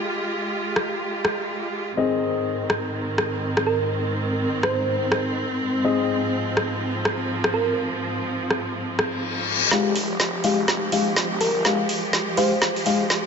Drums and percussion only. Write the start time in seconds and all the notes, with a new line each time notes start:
0.76 cross-stick
1.25 cross-stick
2.70 cross-stick
3.18 cross-stick
3.57 cross-stick
4.63 cross-stick
5.12 cross-stick
6.57 cross-stick
7.05 cross-stick
7.44 cross-stick
8.51 cross-stick
8.99 cross-stick
9.71 snare
9.96 open hi-hat
10.20 snare
10.44 open hi-hat
10.68 snare
10.92 open hi-hat
11.16 snare
11.41 open hi-hat
11.65 snare
11.89 open hi-hat
12.13 snare
12.37 open hi-hat
12.62 snare
12.76 open hi-hat
12.86 open hi-hat
13.10 snare